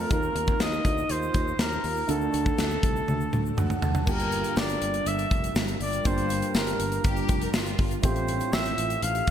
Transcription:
Already playing: grand piano A3 C4 F4 A4, ambient pad F4
0.00 flugelhorn A#4
0.09 fretless electric bass D#2, grand piano D#3 A#3 D#4 F4 A#4, ambient pad D#3 D#4 A#4, flugelhorn A#4, kick, closed hi-hat, shaker
0.23 shaker
0.35 fretless electric bass D#2, closed hi-hat
0.47 kick, shaker
0.60 fretless electric bass D#2, flugelhorn D#5, snare, closed hi-hat, shaker
0.73 shaker
0.85 fretless electric bass D2, kick, closed hi-hat, shaker
0.98 shaker
1.09 fretless electric bass D#2, flugelhorn C5, closed hi-hat, shaker
1.22 shaker
1.34 fretless electric bass D#2, kick, closed hi-hat, shaker
1.48 shaker
1.59 fretless electric bass D#2, flugelhorn A#4, snare, closed hi-hat, shaker
1.72 shaker
1.84 fretless electric bass D#2, open hi-hat
1.97 shaker
2.07 fretless electric bass D2, ambient pad D3 D4 F#4 A4, grand piano D3 A3 D4 F#4 A4, flugelhorn A4, closed hi-hat, shaker
2.21 shaker
2.33 fretless electric bass D2, closed hi-hat, shaker
2.46 kick, shaker
2.58 fretless electric bass D2, snare, closed hi-hat, shaker
2.71 shaker
2.83 fretless electric bass C2, kick, closed hi-hat, shaker
2.96 shaker
3.08 fretless electric bass D2, high tom, shaker
3.21 shaker
3.33 fretless electric bass D2, mid tom, shaker
3.46 shaker
3.57 fretless electric bass D2, grand piano F#5, mid tom, shaker
3.70 mid tom, shaker
3.82 fretless electric bass D2, grand piano A5, floor tom, shaker
3.95 floor tom, shaker
4.06 fretless electric bass G1, grand piano G2 A#3 D4 F4 G4, ambient pad G3 D4 F4 A#4, flugelhorn A#4, kick, crash, shaker
4.20 closed hi-hat, shaker
4.31 closed hi-hat, shaker
4.44 closed hi-hat, shaker
4.56 fretless electric bass G1, flugelhorn D5, snare, tambourine, shaker
4.69 closed hi-hat, shaker
4.82 fretless electric bass G1, closed hi-hat, shaker
4.94 closed hi-hat, shaker
5.06 fretless electric bass G1, flugelhorn E5, closed hi-hat, shaker
5.18 closed hi-hat, shaker
5.30 fretless electric bass F1, kick, closed hi-hat, shaker
5.44 closed hi-hat, shaker
5.55 fretless electric bass G1, snare, tambourine, shaker
5.68 closed hi-hat, shaker
5.80 fretless electric bass G1, flugelhorn D5, open hi-hat
5.93 closed hi-hat, shaker
6.04 fretless electric bass G1, grand piano G2 A#3 D4 F4 G4, flugelhorn C5, kick, closed hi-hat, shaker
6.18 closed hi-hat, shaker
6.29 closed hi-hat, shaker
6.42 closed hi-hat, shaker
6.54 fretless electric bass G1, flugelhorn A#4, snare, tambourine, shaker
6.67 closed hi-hat, shaker
6.80 fretless electric bass G1, closed hi-hat, shaker
6.92 closed hi-hat, shaker
7.04 fretless electric bass G1, violin section G4, kick, closed hi-hat, shaker
7.17 closed hi-hat, shaker
7.29 fretless electric bass F1, kick, closed hi-hat, shaker
7.41 violin section A#4, closed hi-hat, shaker
7.54 fretless electric bass G1, violin section F4, snare, tambourine, shaker
7.66 closed hi-hat, shaker
7.78 fretless electric bass G1, kick, open hi-hat
7.91 closed hi-hat, shaker
8.02 fretless electric bass A1, grand piano A2 A3 C4 F4 G4, ambient pad A3 G4, flugelhorn C5, kick, closed hi-hat, shaker
8.16 closed hi-hat, shaker
8.28 closed hi-hat, shaker
8.40 closed hi-hat, shaker
8.53 fretless electric bass A1, flugelhorn E5, snare, tambourine, shaker
8.65 closed hi-hat, shaker
8.78 fretless electric bass A1, closed hi-hat, shaker
8.90 closed hi-hat, shaker
9.02 fretless electric bass A1, flugelhorn F5, closed hi-hat, shaker
9.15 closed hi-hat, shaker
9.27 fretless electric bass G1, kick, closed hi-hat, shaker

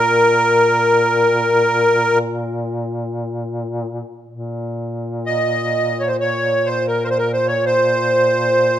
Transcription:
Already playing: duduk A#2, accordion A#4
4.31 duduk A#2
5.26 accordion D#5
6.00 accordion C#5
6.08 accordion C5
6.20 accordion C#5
6.66 accordion C5
6.87 accordion A#4
7.04 accordion A#4 C5
7.11 accordion C5
7.18 accordion A#4
7.33 accordion C5
7.48 accordion C#5
7.66 accordion C5

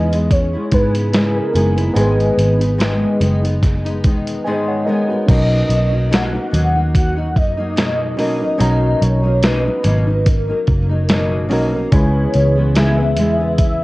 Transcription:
Already playing: picked electric bass E2, steel-string acoustic guitar C#3 G#3 B3 E4, reed electric piano B3 D#4 E4 G#4, soft synth lead D#5
0.11 steel-string acoustic guitar G#3 B3 E4, closed hi-hat
0.31 soft synth lead C#5, kick, closed hi-hat
0.53 steel-string acoustic guitar G#3 B3 E4
0.72 picked electric bass G#2, steel-string acoustic guitar C#3 G#3 B3 E4, soft synth lead B4, kick, closed hi-hat
0.95 closed hi-hat
1.13 steel-string acoustic guitar C#3 G#3 B3 E4, snare, closed hi-hat
1.38 soft synth lead A#4
1.54 picked electric bass F#1, steel-string acoustic guitar C#3 G#3 B3 E4, reed electric piano B3 D#4 E4 G#4, closed hi-hat
1.76 steel-string acoustic guitar G#3 B3 E4, closed hi-hat
1.94 picked electric bass G#1, steel-string acoustic guitar G#2 D#3 G#3 B3 D#4, reed electric piano B3 D#4 G#4 B4, closed hi-hat
1.99 soft synth lead B4
2.20 closed hi-hat
2.38 picked electric bass G#1, closed hi-hat
2.59 steel-string acoustic guitar G#3 B3 D#4, closed hi-hat
2.78 steel-string acoustic guitar G#2 D#3 G#3 B3 D#4, snare, closed hi-hat
3.20 picked electric bass F#1, steel-string acoustic guitar D#3 G#3 B3 D#4, closed hi-hat
3.43 steel-string acoustic guitar G#3 B3 D#4, closed hi-hat
3.63 kick, snare, closed hi-hat
3.85 steel-string acoustic guitar G#3 B3 D#4, closed hi-hat
4.04 picked electric bass E1, steel-string acoustic guitar D#3 G#3 B3 D#4, kick, closed hi-hat
4.27 closed hi-hat
4.44 steel-string acoustic guitar G#2 D#3 G#3 B3 D#4, reed electric piano D#5 G#5
4.68 reed electric piano C#5 F#5
4.85 steel-string acoustic guitar D#3 G#3 B3 D#4, reed electric piano A#4 D#5
5.08 steel-string acoustic guitar B3 D#4, reed electric piano F#4 B4
5.12 steel-string acoustic guitar G#3
5.26 picked electric bass B1, steel-string acoustic guitar B2 F#3 A#3 D#4, reed electric piano C#4 D#4 F#4 A#4, soft synth lead D#5, kick, closed hi-hat, crash
5.69 picked electric bass B1, closed hi-hat
5.91 steel-string acoustic guitar F#3 A#3 D#4
6.11 steel-string acoustic guitar B2 F#3 A#3 D#4, soft synth lead F#5, snare, closed hi-hat
6.33 steel-string acoustic guitar F#3 A#3 D#4
6.51 picked electric bass D#2, steel-string acoustic guitar B2 F#3 A#3 D#4, closed hi-hat
6.75 steel-string acoustic guitar F#3 A#3 D#4
6.95 soft synth lead F#5, kick, closed hi-hat
7.16 steel-string acoustic guitar F#3 A#3 D#4
7.36 picked electric bass F#2, soft synth lead D#5, kick, closed hi-hat
7.57 steel-string acoustic guitar F#3 A#3 D#4
7.76 steel-string acoustic guitar B2 F#3 A#3 D#4, snare, closed hi-hat
8.17 picked electric bass A#1, steel-string acoustic guitar B2 F#3 A#3 D#4, reed electric piano C#4 D#4 F#4 A#4, soft synth lead D#5, open hi-hat
8.40 steel-string acoustic guitar F#3 A#3 D#4
8.58 picked electric bass B1, steel-string acoustic guitar B2 F#3 A#3 D#4, reed electric piano C#4 D#4 F#4 A#5, closed hi-hat
9.02 picked electric bass B1, soft synth lead C#5, closed hi-hat
9.23 steel-string acoustic guitar F#3 A#3 D#4
9.42 steel-string acoustic guitar B2 F#3 A#3 D#4, soft synth lead B4, snare, closed hi-hat
9.65 steel-string acoustic guitar F#3 A#3 D#4
9.83 picked electric bass G#1, steel-string acoustic guitar B2 F#3 A#3 D#4, closed hi-hat
10.07 steel-string acoustic guitar F#3 A#3 D#4
10.26 soft synth lead A#4, kick, closed hi-hat
10.48 steel-string acoustic guitar F#3 A#3 D#4
10.67 picked electric bass F#1, kick, closed hi-hat
10.89 steel-string acoustic guitar F#3 A#3 D#4
11.09 steel-string acoustic guitar B2 F#3 A#3 D#4, snare, closed hi-hat
11.48 picked electric bass B1, steel-string acoustic guitar B2 F#3 A#3 D#4, reed electric piano C#4 D#4 F#4, open hi-hat
11.53 reed electric piano A#4
11.73 steel-string acoustic guitar F#3 A#3 D#4
11.92 picked electric bass C#2, steel-string acoustic guitar C#3 G#3 B3 E4, ambient pad C#3 E3 B3, reed electric piano C#4 E4 G#4 B4, soft synth lead C#5, kick, closed hi-hat
12.34 picked electric bass C#2, closed hi-hat
12.55 steel-string acoustic guitar G#3 B3 E4
12.74 steel-string acoustic guitar C#3 G#3 B3 E4, soft synth lead E5, snare, closed hi-hat
12.98 steel-string acoustic guitar G#3 B3 E4
13.17 picked electric bass E2, steel-string acoustic guitar C#3 G#3 B3 E4, closed hi-hat
13.40 steel-string acoustic guitar G#3 B3 E4
13.57 soft synth lead E5, kick, closed hi-hat

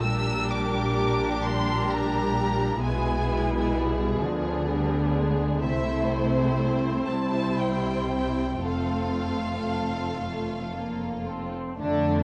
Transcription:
0.02 double bass section A#1, cello section A#2, viola section G3 D4, violin section G4 A#4 E6
0.51 violin section D6
1.41 viola section G3, violin section C6
1.89 violin section A#5
2.81 double bass section B1, cello section B2, viola section G#3 B3, violin section E4 G#4 G#5
3.28 viola section G#3
3.74 viola section G3
4.20 double bass section D2, cello section D3, viola section F3 B3, violin section D4
4.69 viola section G3
5.16 viola section G#3
5.63 double bass section C2, cello section C3, viola section A3 C4, violin section E4 C5 E5
6.11 violin section C5
7.08 double bass section C2, cello section C3, viola section G3, violin section E4 C5 A5
7.59 violin section G5
8.62 double bass section F1, cello section F2, viola section A3 C4, violin section F4 A4 F5
10.22 viola section A3
10.75 viola section A#3
11.28 viola section C4
11.78 double bass section F2, cello section D3, viola section A3, violin section D4

